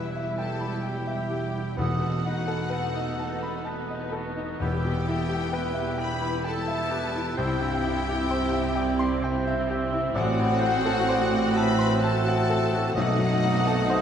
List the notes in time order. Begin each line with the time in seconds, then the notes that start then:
Already playing: E1 E2 B2 G3 B3 E4 G4 B4 E5
0.16 E5
0.38 G4 A4 G5 A5
0.61 B5
0.83 G4 G5
1.07 E5
1.30 G4
1.55 E4
1.77 E2 A3 B3 D#4 F#4 A4 F#5 D#6
2.01 B2
2.26 D#4 B4
2.48 A4
2.70 A4 B4
2.94 D#5
3.19 A5
3.43 B5
3.65 B4 A5
3.88 D#5
4.12 F#4 A4
4.36 D#4
4.60 E1 E2 E3 G3 B3 E4 G4 G5 E6
4.84 B2
5.07 E4 A4
5.29 G4
5.53 B4
5.74 E5
5.98 G4 B4 G5 B5
6.22 B5
6.44 A4 G5 A5
6.68 E5
6.91 G4 B4
7.15 E4
7.36 C2 C3 C4 G4 C5 G5 E6
7.60 G2
7.85 E4
8.08 G4
8.29 C5 E5
8.53 E5
8.75 D5 G5
8.99 C6
9.22 C5 G5
9.47 E5
9.68 G4 E5
9.92 E4
10.14 A1 A2 A3 C4 F#4 D5 F#5 F#6
10.39 A2
10.60 F#4 C5
10.85 A4
11.08 C5 D5
11.34 F#5
11.54 B4 E5 A5 B5
11.79 C6
12.02 A4 A5
12.28 F#5
12.50 A4
12.74 F#4
12.94 B1 B2 A3 C4 D#4 F#4 D#5 F#5 D#6
13.18 F#2
13.43 D#4
13.67 A4
13.90 C5